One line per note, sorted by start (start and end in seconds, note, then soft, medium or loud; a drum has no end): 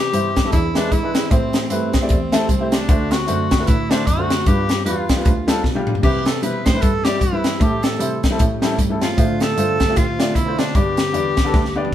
0.00 0.33 C3 medium
0.00 1.30 E3 medium
0.00 0.52 B3 soft
0.00 0.52 C4 soft
0.00 0.49 G4 loud
0.00 0.52 G4 medium
0.13 0.47 G2 medium
0.13 0.30 G3 medium
0.13 0.31 C4 medium
0.13 0.31 E4 medium
0.13 0.31 C5 medium
0.13 closed hi-hat loud
0.36 kick medium
0.36 snare loud
0.36 closed hi-hat medium
0.44 0.53 G3 medium
0.44 0.53 C4 medium
0.44 0.53 E4 medium
0.44 0.53 A4 medium
0.52 0.86 E2 loud
0.52 1.12 E3 medium
0.52 1.31 B3 medium
0.52 1.31 D4 medium
0.52 0.78 E4 medium
0.52 1.31 G#4 medium
0.52 kick loud
0.52 closed hi-hat medium
0.75 0.88 G#3 medium
0.75 0.88 D4 medium
0.75 0.94 D4 medium
0.75 0.88 E4 medium
0.75 0.89 B4 medium
0.75 snare loud
0.75 closed hi-hat medium
0.92 1.25 G#2 medium
0.92 1.33 E4 medium
0.92 kick medium
0.92 closed hi-hat medium
1.03 1.19 G#3 medium
1.03 1.19 D4 medium
1.03 1.19 E4 medium
1.03 1.20 B4 medium
1.15 snare loud
1.15 closed hi-hat medium
1.31 1.65 A2 loud
1.31 1.90 A2 medium
1.31 2.88 E3 medium
1.31 1.54 A3 medium
1.31 4.44 A3 medium
1.31 1.70 C4 medium
1.31 2.88 C4 soft
1.31 1.55 E4 medium
1.31 1.55 G4 medium
1.31 2.88 G4 medium
1.31 1.55 C5 medium
1.31 kick loud
1.31 closed hi-hat medium
1.53 snare loud
1.53 closed hi-hat medium
1.70 2.04 G2 medium
1.70 1.88 A3 medium
1.70 2.74 C4 medium
1.70 1.88 E4 medium
1.70 1.89 G4 medium
1.70 1.89 B4 medium
1.70 closed hi-hat loud
1.93 kick medium
1.93 snare loud
1.93 closed hi-hat medium
2.01 2.16 A3 medium
2.01 2.16 E4 medium
2.01 2.16 G4 medium
2.01 2.17 D5 medium
2.09 2.44 E2 loud
2.09 kick loud
2.09 closed hi-hat medium
2.32 2.45 A3 medium
2.32 2.45 E4 medium
2.32 2.45 G4 medium
2.32 2.46 A4 loud
2.32 snare loud
2.32 closed hi-hat medium
2.49 2.83 C2 medium
2.49 kick medium
2.49 closed hi-hat medium
2.60 2.76 A3 medium
2.60 2.77 E4 medium
2.60 2.77 G4 medium
2.60 2.77 C5 medium
2.72 3.13 D4 loud
2.72 snare loud
2.72 closed hi-hat medium
2.88 3.22 D2 loud
2.88 3.47 D3 medium
2.88 4.46 D3 medium
2.88 3.12 A3 medium
2.88 4.46 C4 medium
2.88 3.12 D4 medium
2.88 3.12 F#4 medium
2.88 4.46 F#4 medium
2.88 3.13 C5 medium
2.88 kick loud
2.88 closed hi-hat medium
3.11 3.69 F#4 medium
3.11 snare loud
3.11 closed hi-hat medium
3.27 3.62 F#2 medium
3.27 3.45 A3 medium
3.27 3.45 D4 medium
3.27 3.46 F#4 medium
3.27 3.46 C5 medium
3.27 closed hi-hat loud
3.51 kick medium
3.51 snare loud
3.51 closed hi-hat medium
3.59 3.73 A3 medium
3.59 3.74 D4 medium
3.59 3.74 F#4 medium
3.59 3.74 B4 medium
3.67 4.01 A2 medium
3.67 3.92 E4 medium
3.67 kick loud
3.67 closed hi-hat loud
3.90 4.03 A3 medium
3.90 4.08 D4 medium
3.90 4.03 D4 medium
3.90 4.03 F#4 medium
3.90 4.04 C5 medium
3.90 snare loud
3.90 closed hi-hat loud
4.07 4.40 F#2 medium
4.07 4.48 F#4 medium
4.07 kick medium
4.07 closed hi-hat medium
4.18 4.34 A3 medium
4.18 4.34 D4 medium
4.18 4.34 F#4 medium
4.18 4.35 C5 medium
4.30 snare loud
4.30 closed hi-hat medium
4.46 4.80 G2 loud
4.46 5.05 G2 medium
4.46 4.70 G3 medium
4.46 7.58 B3 medium
4.46 6.02 D4 medium
4.46 4.70 D4 medium
4.46 6.03 F4 medium
4.46 4.70 F4 medium
4.46 9.14 G4 medium
4.46 4.85 G4 loud
4.46 4.71 B4 medium
4.46 kick loud
4.46 closed hi-hat medium
4.69 snare loud
4.69 closed hi-hat medium
4.85 5.19 E2 medium
4.85 5.03 G3 medium
4.85 5.03 D4 medium
4.85 5.54 F4 medium
4.85 5.04 F4 medium
4.85 5.04 B4 medium
4.85 closed hi-hat loud
5.09 kick medium
5.09 snare loud
5.09 closed hi-hat medium
5.16 5.31 G3 medium
5.16 5.31 D4 medium
5.16 5.31 F4 medium
5.16 5.31 B4 medium
5.25 5.59 D2 loud
5.25 kick loud
5.25 closed hi-hat medium
5.47 5.60 G3 medium
5.47 5.60 D4 medium
5.47 5.61 F4 medium
5.47 5.61 A4 loud
5.47 snare loud
5.47 closed hi-hat loud
5.64 5.98 B2 medium
5.64 kick medium
5.64 snare medium
5.75 5.91 G3 medium
5.75 5.91 D4 medium
5.75 5.92 F4 medium
5.75 5.92 G4 medium
5.75 high tom medium
5.87 mid tom medium
5.95 floor tom medium
6.03 6.37 C3 loud
6.03 6.62 C3 medium
6.03 9.14 E3 medium
6.03 6.27 G3 medium
6.03 8.37 C4 medium
6.03 6.27 C4 medium
6.03 6.27 E4 medium
6.03 6.29 G4 medium
6.03 6.28 B4 medium
6.03 kick loud
6.03 crash medium
6.25 6.43 A4 medium
6.25 snare loud
6.25 closed hi-hat medium
6.42 6.62 B2 medium
6.42 6.60 G3 medium
6.42 6.61 C4 medium
6.42 6.61 E4 medium
6.42 6.67 B4 medium
6.42 6.61 B4 medium
6.42 closed hi-hat medium
6.65 6.80 A2 loud
6.65 6.83 C5 medium
6.65 kick medium
6.65 snare loud
6.65 closed hi-hat medium
6.74 6.88 G3 medium
6.74 6.89 C4 medium
6.74 6.89 E4 medium
6.74 6.89 B4 medium
6.81 7.16 G2 loud
6.81 7.06 A4 medium
6.81 kick loud
6.81 closed hi-hat medium
7.05 7.18 G3 medium
7.05 7.18 C4 medium
7.05 7.18 E4 medium
7.05 7.22 G4 loud
7.05 7.18 D5 medium
7.05 snare loud
7.05 closed hi-hat medium
7.20 7.55 G2 medium
7.20 7.63 E4 medium
7.20 kick medium
7.20 closed hi-hat medium
7.33 7.49 G3 medium
7.33 7.49 C4 medium
7.33 7.49 E4 medium
7.33 7.49 B4 medium
7.44 snare loud
7.44 closed hi-hat medium
7.60 7.94 A2 loud
7.60 8.19 A2 medium
7.60 7.84 G3 medium
7.60 10.72 A3 medium
7.60 7.84 C4 medium
7.60 7.84 E4 medium
7.60 7.85 G4 medium
7.60 7.85 A4 medium
7.60 kick loud
7.60 closed hi-hat medium
7.83 8.23 A4 medium
7.83 snare loud
7.83 closed hi-hat medium
7.99 8.33 C3 medium
7.99 8.17 G3 medium
7.99 8.17 C4 medium
7.99 8.18 E4 medium
7.99 8.18 C5 medium
7.99 closed hi-hat loud
8.23 kick medium
8.23 snare medium
8.23 closed hi-hat medium
8.30 8.39 G3 medium
8.30 8.39 C4 medium
8.30 8.40 E4 medium
8.30 8.40 A4 medium
8.39 8.98 A2 medium
8.39 8.73 A2 loud
8.39 9.17 C#4 medium
8.39 kick loud
8.39 closed hi-hat loud
8.62 8.74 G3 medium
8.62 8.75 C#4 medium
8.62 8.75 E4 medium
8.62 8.75 A4 medium
8.62 snare loud
8.62 closed hi-hat medium
8.78 9.12 G2 medium
8.78 kick medium
8.78 closed hi-hat medium
8.90 9.06 G3 medium
8.90 9.06 C#4 medium
8.90 9.06 E4 medium
8.90 9.06 A4 medium
9.01 9.43 F4 medium
9.01 snare loud
9.01 closed hi-hat medium
9.17 9.51 A2 loud
9.17 9.76 A2 medium
9.17 11.95 D3 medium
9.17 9.41 A3 medium
9.17 9.41 D4 medium
9.17 10.73 F4 medium
9.17 9.42 F4 medium
9.17 10.73 C5 medium
9.17 9.42 C5 medium
9.17 kick loud
9.17 closed hi-hat medium
9.40 9.99 A4 loud
9.40 snare medium
9.40 closed hi-hat medium
9.56 9.90 G2 medium
9.56 9.74 A3 medium
9.56 9.75 D4 medium
9.56 9.75 F4 medium
9.56 9.75 C5 medium
9.56 closed hi-hat loud
9.80 kick medium
9.80 snare loud
9.80 closed hi-hat medium
9.88 10.02 A3 medium
9.88 10.02 D4 medium
9.88 10.03 F4 medium
9.88 10.03 G4 medium
9.96 10.30 A2 medium
9.96 10.37 F4 medium
9.96 kick loud
9.96 closed hi-hat medium
10.18 10.31 A3 medium
10.18 10.31 D4 medium
10.18 10.32 F4 medium
10.18 10.32 D5 medium
10.18 snare loud
10.18 closed hi-hat loud
10.35 10.69 B2 medium
10.35 10.60 E4 medium
10.35 kick medium
10.35 closed hi-hat medium
10.46 10.62 A3 medium
10.46 10.63 D4 medium
10.46 10.63 F4 medium
10.46 10.63 C5 medium
10.59 10.77 D4 medium
10.59 snare loud
10.59 closed hi-hat medium
10.75 11.08 G2 loud
10.75 11.34 G2 medium
10.75 11.95 G3 medium
10.75 10.98 B3 medium
10.75 11.95 B3 medium
10.75 10.98 D4 medium
10.75 11.95 G4 medium
10.75 10.98 G4 medium
10.75 11.93 G4 loud
10.75 10.99 D5 medium
10.75 kick loud
10.75 closed hi-hat medium
10.97 snare loud
10.97 closed hi-hat medium
11.13 11.53 E2 medium
11.13 11.31 B3 medium
11.13 11.31 D4 medium
11.13 11.31 G4 medium
11.13 11.32 D5 medium
11.13 closed hi-hat medium
11.37 kick medium
11.37 snare loud
11.37 closed hi-hat medium
11.44 11.59 B3 medium
11.44 11.59 D4 medium
11.44 11.59 G4 medium
11.44 11.60 A4 medium
11.54 11.87 D2 medium
11.54 kick loud
11.54 snare soft
11.65 snare soft
11.76 11.88 B3 medium
11.76 11.88 D4 medium
11.76 11.89 G4 medium
11.76 11.89 D5 medium
11.85 high tom medium